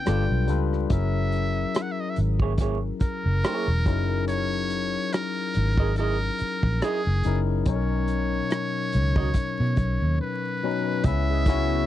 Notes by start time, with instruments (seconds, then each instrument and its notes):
Already playing: muted trumpet G5
0.06 fingered electric bass G1, tine electric piano G3 D4 F4 A4 B4, clean electric guitar B3 F4 A4 D5, cross-stick, closed hi-hat
0.30 fingered electric bass B1
0.48 fingered electric bass C#2, tine electric piano G3 D4 F4 A4 B4, closed hi-hat
0.73 cross-stick
0.90 fingered electric bass F#1, tine electric piano F#3 C#4 E4 G#4 A#4, muted trumpet E5, kick, closed hi-hat
1.32 cross-stick, closed hi-hat
1.75 cross-stick, closed hi-hat
1.82 muted trumpet F#5
1.92 muted trumpet E5
2.01 muted trumpet D#5
2.10 muted trumpet E5
2.16 fingered electric bass G#1, closed hi-hat
2.40 clean electric guitar A#3 E4 G#4 C#5, kick
2.58 clean electric guitar A#3 E4 G#4, kick, closed hi-hat
2.62 clean electric guitar C#5
3.00 muted trumpet A#4, muted fingered electric bass stroke, kick, closed hi-hat
3.26 fingered electric bass F#1
3.44 clean electric guitar A#3 E4 G#4 C#5, cross-stick, closed hi-hat
3.68 fingered electric bass E1
3.86 fingered electric bass F#1, tine electric piano F#3 C#4 D#4 E4 G#4 A#4, kick, closed hi-hat
4.28 muted trumpet C#5, closed hi-hat
4.70 closed hi-hat
5.13 muted trumpet A#4, cross-stick, closed hi-hat
5.54 fingered electric bass G#1, closed hi-hat
5.78 clean electric guitar E4 G#4 A#4 D#5, kick
5.96 clean electric guitar E4 G#4 A#4, muted trumpet A#4, closed hi-hat
6.00 clean electric guitar D#5
6.38 muted fingered electric bass stroke, closed hi-hat
6.63 fingered electric bass A#1, kick
6.82 clean electric guitar E4 G#4 A#4 D#5, muted trumpet G#4, cross-stick, closed hi-hat
7.07 fingered electric bass F#1
7.24 fingered electric bass F#1, tine electric piano F#3 C#4 D#4 E4 G#4 A#4, closed hi-hat
7.66 fingered electric bass B1, tine electric piano B2 F#3 C#4 D#4 A4, muted trumpet C#5, kick, closed hi-hat
7.76 tine electric piano A#4
8.08 closed hi-hat
8.50 cross-stick, closed hi-hat
8.92 fingered electric bass C#2, closed hi-hat
9.16 clean electric guitar C#4 F#4 A#4 D#5, kick
9.34 kick, closed hi-hat
9.60 fingered electric bass B2
9.77 fingered electric bass B1, kick, closed hi-hat
10.02 fingered electric bass D#2
10.21 muted trumpet B4
10.63 tine electric piano B2 F#3 C#4 D#4 B4
11.04 fingered electric bass C#2, analog synth pad C#3 B3 C#4 E4, tine electric piano C#3 B3 C#4 E4, muted trumpet E5, kick, closed hi-hat
11.08 tine electric piano B4
11.27 horn section G#3 G#4
11.46 tine electric piano C#3 B3 C#4 E4, horn section F#3 F#4, kick, snare, closed hi-hat
11.50 tine electric piano C#5